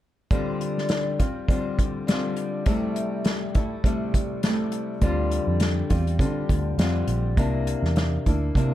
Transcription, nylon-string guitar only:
0, 0, Header, 1, 2, 480
1, 0, Start_track
1, 0, Key_signature, -1, "minor"
1, 0, Tempo, 588813
1, 251, Time_signature, 4, 2, 24, 8
1, 7125, End_track
2, 0, Start_track
2, 0, Title_t, "Nylon-string guitar"
2, 0, Program_c, 0, 24
2, 253, Note_on_c, 0, 50, 69
2, 258, Note_on_c, 0, 55, 80
2, 260, Note_on_c, 0, 60, 74
2, 266, Note_on_c, 0, 65, 70
2, 960, Note_off_c, 0, 65, 0
2, 969, Note_on_c, 0, 65, 43
2, 973, Note_off_c, 0, 50, 0
2, 975, Note_off_c, 0, 60, 0
2, 978, Note_on_c, 0, 60, 41
2, 981, Note_off_c, 0, 55, 0
2, 984, Note_on_c, 0, 55, 41
2, 1203, Note_off_c, 0, 55, 0
2, 1207, Note_on_c, 0, 50, 50
2, 1209, Note_off_c, 0, 60, 0
2, 1211, Note_off_c, 0, 65, 0
2, 1213, Note_on_c, 0, 55, 51
2, 1219, Note_on_c, 0, 60, 55
2, 1226, Note_on_c, 0, 65, 56
2, 1679, Note_off_c, 0, 50, 0
2, 1688, Note_on_c, 0, 50, 54
2, 1693, Note_off_c, 0, 55, 0
2, 1697, Note_on_c, 0, 55, 59
2, 1699, Note_off_c, 0, 65, 0
2, 1702, Note_off_c, 0, 60, 0
2, 1705, Note_on_c, 0, 60, 57
2, 1711, Note_on_c, 0, 65, 63
2, 2166, Note_off_c, 0, 50, 0
2, 2169, Note_on_c, 0, 48, 72
2, 2173, Note_off_c, 0, 55, 0
2, 2175, Note_off_c, 0, 60, 0
2, 2176, Note_off_c, 0, 65, 0
2, 2176, Note_on_c, 0, 55, 76
2, 2179, Note_on_c, 0, 57, 78
2, 2179, Note_on_c, 0, 64, 78
2, 2887, Note_off_c, 0, 64, 0
2, 2890, Note_on_c, 0, 64, 43
2, 2891, Note_off_c, 0, 48, 0
2, 2900, Note_off_c, 0, 57, 0
2, 2903, Note_on_c, 0, 57, 38
2, 2908, Note_off_c, 0, 55, 0
2, 2911, Note_on_c, 0, 55, 38
2, 3126, Note_off_c, 0, 55, 0
2, 3128, Note_on_c, 0, 48, 50
2, 3131, Note_off_c, 0, 57, 0
2, 3131, Note_off_c, 0, 64, 0
2, 3135, Note_on_c, 0, 55, 54
2, 3140, Note_on_c, 0, 57, 55
2, 3150, Note_on_c, 0, 64, 53
2, 3601, Note_off_c, 0, 48, 0
2, 3611, Note_on_c, 0, 48, 55
2, 3614, Note_off_c, 0, 55, 0
2, 3618, Note_on_c, 0, 55, 54
2, 3623, Note_off_c, 0, 57, 0
2, 3626, Note_off_c, 0, 64, 0
2, 3626, Note_on_c, 0, 57, 63
2, 3629, Note_on_c, 0, 64, 57
2, 4092, Note_off_c, 0, 48, 0
2, 4096, Note_on_c, 0, 50, 75
2, 4098, Note_off_c, 0, 55, 0
2, 4100, Note_off_c, 0, 57, 0
2, 4101, Note_on_c, 0, 55, 76
2, 4103, Note_on_c, 0, 60, 78
2, 4107, Note_off_c, 0, 64, 0
2, 4110, Note_on_c, 0, 65, 74
2, 4794, Note_off_c, 0, 65, 0
2, 4804, Note_on_c, 0, 65, 46
2, 4813, Note_off_c, 0, 60, 0
2, 4816, Note_on_c, 0, 60, 45
2, 4825, Note_off_c, 0, 55, 0
2, 4828, Note_on_c, 0, 55, 34
2, 4841, Note_off_c, 0, 50, 0
2, 5043, Note_off_c, 0, 55, 0
2, 5047, Note_on_c, 0, 50, 50
2, 5048, Note_off_c, 0, 65, 0
2, 5051, Note_off_c, 0, 60, 0
2, 5052, Note_on_c, 0, 55, 55
2, 5061, Note_on_c, 0, 60, 61
2, 5062, Note_on_c, 0, 65, 56
2, 5526, Note_off_c, 0, 50, 0
2, 5529, Note_on_c, 0, 50, 54
2, 5535, Note_off_c, 0, 55, 0
2, 5537, Note_off_c, 0, 65, 0
2, 5538, Note_on_c, 0, 55, 60
2, 5542, Note_off_c, 0, 60, 0
2, 5545, Note_on_c, 0, 60, 62
2, 5548, Note_on_c, 0, 65, 63
2, 6012, Note_on_c, 0, 48, 75
2, 6014, Note_off_c, 0, 55, 0
2, 6018, Note_on_c, 0, 58, 71
2, 6020, Note_off_c, 0, 60, 0
2, 6020, Note_off_c, 0, 65, 0
2, 6023, Note_on_c, 0, 62, 88
2, 6025, Note_on_c, 0, 64, 77
2, 6036, Note_off_c, 0, 50, 0
2, 6732, Note_off_c, 0, 48, 0
2, 6734, Note_off_c, 0, 64, 0
2, 6735, Note_off_c, 0, 58, 0
2, 6737, Note_on_c, 0, 64, 44
2, 6745, Note_off_c, 0, 62, 0
2, 6748, Note_on_c, 0, 62, 43
2, 6758, Note_on_c, 0, 58, 36
2, 6971, Note_off_c, 0, 58, 0
2, 6971, Note_on_c, 0, 48, 54
2, 6975, Note_off_c, 0, 64, 0
2, 6976, Note_off_c, 0, 62, 0
2, 6981, Note_on_c, 0, 58, 55
2, 6986, Note_on_c, 0, 62, 55
2, 6992, Note_on_c, 0, 64, 57
2, 7125, Note_off_c, 0, 48, 0
2, 7125, Note_off_c, 0, 58, 0
2, 7125, Note_off_c, 0, 62, 0
2, 7125, Note_off_c, 0, 64, 0
2, 7125, End_track
0, 0, End_of_file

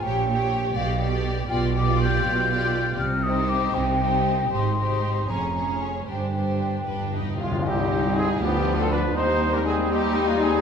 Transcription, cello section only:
0, 0, Header, 1, 2, 480
1, 0, Start_track
1, 0, Key_signature, -3, "minor"
1, 0, Tempo, 481155
1, 38, Time_signature, 6, 3, 24, 8
1, 997, Tempo, 499168
1, 3397, Tempo, 513699
1, 5317, Tempo, 529101
1, 7237, Tempo, 498339
1, 10072, End_track
2, 0, Start_track
2, 0, Title_t, "Cello section"
2, 0, Program_c, 0, 48
2, 32, Note_on_c, 0, 46, 76
2, 669, Note_off_c, 0, 46, 0
2, 747, Note_on_c, 0, 47, 72
2, 1385, Note_off_c, 0, 47, 0
2, 1477, Note_on_c, 0, 47, 77
2, 2129, Note_off_c, 0, 47, 0
2, 2217, Note_on_c, 0, 47, 71
2, 2837, Note_off_c, 0, 47, 0
2, 2912, Note_on_c, 0, 48, 79
2, 3544, Note_off_c, 0, 48, 0
2, 3635, Note_on_c, 0, 48, 67
2, 4274, Note_off_c, 0, 48, 0
2, 4355, Note_on_c, 0, 44, 76
2, 4988, Note_off_c, 0, 44, 0
2, 5071, Note_on_c, 0, 41, 57
2, 5709, Note_off_c, 0, 41, 0
2, 5801, Note_on_c, 0, 43, 58
2, 6437, Note_off_c, 0, 43, 0
2, 6519, Note_on_c, 0, 43, 48
2, 7154, Note_off_c, 0, 43, 0
2, 7236, Note_on_c, 0, 36, 68
2, 7924, Note_off_c, 0, 36, 0
2, 7973, Note_on_c, 0, 38, 62
2, 8687, Note_on_c, 0, 39, 69
2, 8689, Note_off_c, 0, 38, 0
2, 10072, Note_off_c, 0, 39, 0
2, 10072, End_track
0, 0, End_of_file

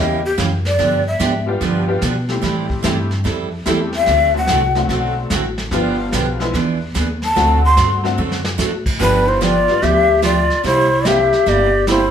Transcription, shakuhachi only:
0, 0, Header, 1, 2, 480
1, 0, Start_track
1, 0, Tempo, 410678
1, 920, Time_signature, 4, 2, 24, 8
1, 14152, End_track
2, 0, Start_track
2, 0, Title_t, "Shakuhachi"
2, 0, Program_c, 0, 77
2, 3, Note_on_c, 0, 75, 87
2, 289, Note_off_c, 0, 75, 0
2, 296, Note_on_c, 0, 67, 86
2, 388, Note_off_c, 0, 67, 0
2, 775, Note_on_c, 0, 74, 95
2, 1214, Note_off_c, 0, 74, 0
2, 1257, Note_on_c, 0, 76, 83
2, 1695, Note_off_c, 0, 76, 0
2, 4629, Note_on_c, 0, 76, 94
2, 5063, Note_off_c, 0, 76, 0
2, 5107, Note_on_c, 0, 78, 96
2, 5542, Note_off_c, 0, 78, 0
2, 8466, Note_on_c, 0, 81, 97
2, 8901, Note_off_c, 0, 81, 0
2, 8940, Note_on_c, 0, 84, 94
2, 9377, Note_off_c, 0, 84, 0
2, 10527, Note_on_c, 0, 71, 104
2, 10851, Note_on_c, 0, 72, 94
2, 10869, Note_off_c, 0, 71, 0
2, 10956, Note_off_c, 0, 72, 0
2, 10956, Note_on_c, 0, 72, 75
2, 11015, Note_on_c, 0, 74, 105
2, 11032, Note_off_c, 0, 72, 0
2, 11490, Note_on_c, 0, 76, 105
2, 11508, Note_off_c, 0, 74, 0
2, 11965, Note_off_c, 0, 76, 0
2, 11974, Note_on_c, 0, 74, 96
2, 12414, Note_off_c, 0, 74, 0
2, 12458, Note_on_c, 0, 72, 103
2, 12946, Note_on_c, 0, 76, 97
2, 12963, Note_off_c, 0, 72, 0
2, 13426, Note_on_c, 0, 74, 101
2, 13443, Note_off_c, 0, 76, 0
2, 13892, Note_off_c, 0, 74, 0
2, 13903, Note_on_c, 0, 72, 89
2, 14152, Note_off_c, 0, 72, 0
2, 14152, End_track
0, 0, End_of_file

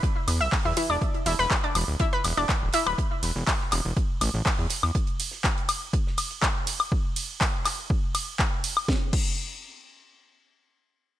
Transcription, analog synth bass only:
0, 0, Header, 1, 2, 480
1, 0, Start_track
1, 0, Tempo, 491803
1, 991, Time_signature, 4, 2, 24, 8
1, 10929, End_track
2, 0, Start_track
2, 0, Title_t, "Analog synth bass"
2, 0, Program_c, 0, 38
2, 271, Note_on_c, 0, 40, 97
2, 398, Note_on_c, 0, 35, 81
2, 412, Note_off_c, 0, 40, 0
2, 476, Note_off_c, 0, 35, 0
2, 637, Note_on_c, 0, 40, 78
2, 716, Note_off_c, 0, 40, 0
2, 876, Note_on_c, 0, 28, 82
2, 955, Note_off_c, 0, 28, 0
2, 1230, Note_on_c, 0, 28, 94
2, 1317, Note_off_c, 0, 28, 0
2, 1357, Note_on_c, 0, 28, 86
2, 1435, Note_off_c, 0, 28, 0
2, 1711, Note_on_c, 0, 28, 98
2, 1798, Note_off_c, 0, 28, 0
2, 1837, Note_on_c, 0, 26, 82
2, 1915, Note_off_c, 0, 26, 0
2, 2190, Note_on_c, 0, 28, 98
2, 2277, Note_off_c, 0, 28, 0
2, 2316, Note_on_c, 0, 28, 81
2, 2395, Note_off_c, 0, 28, 0
2, 2556, Note_on_c, 0, 26, 79
2, 2635, Note_off_c, 0, 26, 0
2, 2797, Note_on_c, 0, 26, 83
2, 2875, Note_off_c, 0, 26, 0
2, 3152, Note_on_c, 0, 28, 96
2, 3238, Note_off_c, 0, 28, 0
2, 3277, Note_on_c, 0, 28, 84
2, 3355, Note_off_c, 0, 28, 0
2, 3631, Note_on_c, 0, 28, 96
2, 3717, Note_off_c, 0, 28, 0
2, 3757, Note_on_c, 0, 28, 81
2, 3836, Note_off_c, 0, 28, 0
2, 4112, Note_on_c, 0, 33, 99
2, 4198, Note_off_c, 0, 33, 0
2, 4236, Note_on_c, 0, 33, 83
2, 4315, Note_off_c, 0, 33, 0
2, 4476, Note_on_c, 0, 40, 77
2, 4555, Note_off_c, 0, 40, 0
2, 4717, Note_on_c, 0, 40, 84
2, 4795, Note_off_c, 0, 40, 0
2, 10929, End_track
0, 0, End_of_file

